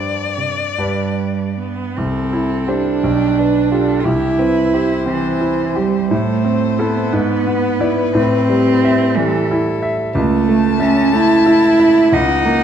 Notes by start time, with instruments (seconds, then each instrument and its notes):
Already playing: grand piano G2 D4 G4 C5, violin D5
0.37 cello C3
0.78 grand piano G2 D4 G4 B4, cello G3
1.59 cello B3
1.97 grand piano C2, cello C4, violin A4
2.33 grand piano E4
2.67 cello D4, grand piano G4 C5
3.03 grand piano B1, violin G4
3.39 grand piano D4, violin B4
3.72 grand piano F4 G4, violin A4
4.00 cello F4
4.04 grand piano C2, cello E4, violin G4
4.38 grand piano C4, violin B4
4.73 grand piano G4, violin C5
5.06 cello E3, grand piano C4
5.41 grand piano E4
5.76 cello G3, grand piano G4
6.11 grand piano A2, cello A3, violin C5
6.45 grand piano C4
6.79 cello B3, grand piano E4 A4
7.13 grand piano G#2, violin B4
7.47 grand piano B3
7.80 grand piano E4 D5
8.15 grand piano A2, cello C4
8.49 grand piano G3
8.85 grand piano E5
9.17 cello E3, grand piano G3, violin A4
9.51 grand piano E4
9.82 grand piano E5
10.15 grand piano C#2, cello A3, violin A5
10.48 grand piano A3
10.80 cello C#4, grand piano E5
11.13 grand piano A3, cello E4
11.46 grand piano E4
11.80 grand piano E5
12.13 grand piano C#2, cello D#4, violin F#5
12.45 grand piano A#3